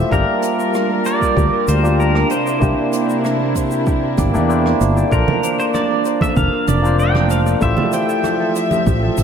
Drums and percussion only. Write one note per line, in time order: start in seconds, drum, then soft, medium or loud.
0.12 kick loud
0.12 shaker soft
0.42 closed hi-hat loud
0.42 shaker medium
0.60 shaker medium
0.74 cross-stick medium
0.74 shaker medium
1.05 closed hi-hat medium
1.05 shaker medium
1.21 kick medium
1.21 shaker medium
1.37 kick loud
1.37 shaker soft
1.68 closed hi-hat loud
1.68 shaker medium
1.85 shaker medium
2.00 shaker soft
2.15 cross-stick medium
2.30 closed hi-hat medium
2.30 shaker medium
2.47 shaker medium
2.62 kick loud
2.62 shaker medium
2.93 closed hi-hat loud
2.93 shaker medium
3.10 shaker medium
3.25 cross-stick medium
3.25 shaker soft
3.55 kick medium
3.55 closed hi-hat medium
3.55 shaker medium
3.71 shaker medium
3.87 kick loud
3.87 shaker medium
4.18 kick loud
4.18 closed hi-hat medium
4.18 shaker medium
4.35 shaker medium
4.50 shaker medium
4.66 cross-stick medium
4.81 closed hi-hat medium
4.81 shaker medium
4.97 shaker medium
5.12 kick loud
5.12 shaker medium
5.28 high conga medium
5.28 low conga medium
5.43 closed hi-hat medium
5.43 shaker loud
5.60 shaker medium
5.74 cross-stick medium
5.74 high conga medium
5.74 shaker medium
6.05 closed hi-hat medium
6.05 shaker medium
6.21 kick medium
6.21 high conga medium
6.21 shaker medium
6.37 kick loud
6.37 shaker soft
6.67 closed hi-hat medium
6.67 high conga medium
6.67 shaker medium
6.85 shaker medium
7.00 shaker soft
7.15 cross-stick medium
7.15 high conga medium
7.30 closed hi-hat medium
7.30 shaker medium
7.47 shaker medium
7.62 kick loud
7.62 shaker medium
7.77 high conga medium
7.77 low conga medium
7.93 closed hi-hat medium
7.93 shaker medium
8.09 shaker medium
8.24 cross-stick medium
8.24 high conga medium
8.24 shaker medium
8.56 closed hi-hat medium
8.56 shaker medium
8.71 high conga medium
8.71 shaker medium
8.87 kick loud
8.87 shaker medium
9.17 kick loud
9.17 closed hi-hat loud
9.17 high conga medium
9.17 shaker medium